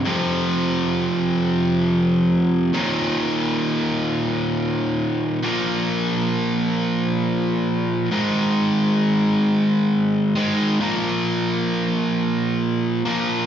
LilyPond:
\new Staff \with { instrumentName = "Distorted electric guitar" } { \clef bass \time 6/8 \key aes \lydian \tempo 4. = 45 <f, c f>2. | <ees, bes, ees>2. | <bes, f bes>2. | <aes, ees aes>2~ <aes, ees aes>8 <aes, ees aes>8 |
<bes, f bes>2~ <bes, f bes>8 <bes, f bes>8 | }